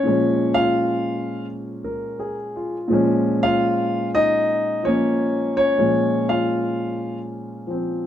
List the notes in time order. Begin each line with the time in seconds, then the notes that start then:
Already playing: C#5
0.03 A#2 F3 G#3
0.08 C#4
0.54 F4 F5
1.84 A#4
2.19 G#4
2.56 F4
2.88 A#2 F3 G#3
2.93 C#4
3.43 F4 F5
4.15 D#4 D#5
4.83 F3 A#3 C#4 C#5
5.57 C#4 C#5
5.78 A#2 F3 G#3 C#4
6.29 F4 F5
7.67 F3 C4